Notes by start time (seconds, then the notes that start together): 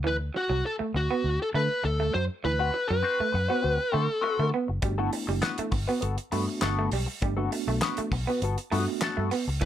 0.04 D2 E3 B4
0.34 F#4, muted clean electric guitar stroke
0.49 C2 F#3
0.66 A4
0.79 A3, muted fingered electric bass stroke
0.94 D2 F#4, muted clean electric guitar stroke
1.11 B3
1.24 D2
1.42 A4
1.54 D3 A3 B4
1.84 D2 A4, muted clean electric guitar stroke
2.00 A3
2.14 F#2 F#3 C5
2.44 D2 E3 B4, muted clean electric guitar stroke
2.59 C4 F#4 B4
2.74 muted clean electric guitar stroke
2.89 F#2 F#3 B4, muted clean electric guitar stroke
3.03 C4 F#4 C5
3.20 A3, muted fingered electric bass stroke
3.32 F#2, muted clean electric guitar stroke
3.48 B3 C4 F#4 C5
3.62 D2 C4 F#4 B4
3.78 muted clean electric guitar stroke
3.92 D3 A3 C4 F#4 A4 C5
4.09 muted clean electric guitar stroke
4.21 C4 F#4 B4, muted clean electric guitar stroke
4.39 D3 A3
4.53 B3, muted clean electric guitar stroke
4.68 F#1, muted clean electric guitar stroke
4.82 G3 A3 B3 D4 F#4, muted clean electric guitar stroke, kick, closed hi-hat
4.98 A3 B3 D4 E4 F#4 A4
5.12 muted clean electric guitar stroke, open hi-hat
5.27 F#1 G3, muted clean electric guitar stroke
5.42 B3 F#4 B4, snare, clap, closed hi-hat
5.58 A3, muted fingered electric bass stroke, closed hi-hat
5.71 G1, muted clean electric guitar stroke, kick, open hi-hat
5.88 B3 F#4 B4
6.01 G1 B3 F#4 A4, closed hi-hat
6.18 closed hi-hat
6.32 G2 A3 B3 D4 F#4 B4, open hi-hat
6.48 muted clean electric guitar stroke
6.61 G1 B3 F#4 A4, muted clean electric guitar stroke, snare, clap, closed hi-hat
6.79 A3
6.92 B1 G3, open hi-hat
7.06 muted clean electric guitar stroke
7.22 G1 G3 A3 B3 D4 G4, muted clean electric guitar stroke, kick, closed hi-hat
7.37 A3 A#3 B3 D4 F#4 A4
7.44 B3
7.52 muted clean electric guitar stroke, open hi-hat
7.68 B1 A3, muted clean electric guitar stroke
7.82 B3 F#4 B4, snare, clap, closed hi-hat
7.97 A3, muted fingered electric bass stroke, closed hi-hat
8.12 B1, muted clean electric guitar stroke, kick, open hi-hat
8.27 B3 F#4 B4
8.42 G1 B3 F#4 A4, closed hi-hat
8.58 muted clean electric guitar stroke, closed hi-hat
8.72 G2 A3 B3 D4 F4 F#4 B4, open hi-hat
8.79 F#4
8.88 muted clean electric guitar stroke
9.01 B3 F#4 A4, muted clean electric guitar stroke, snare, clap, closed hi-hat
9.17 G2 A3
9.31 B3, muted clean electric guitar stroke, open hi-hat
9.48 C#2, muted clean electric guitar stroke
9.61 D2 E3 B3 F#4, muted clean electric guitar stroke, kick, closed hi-hat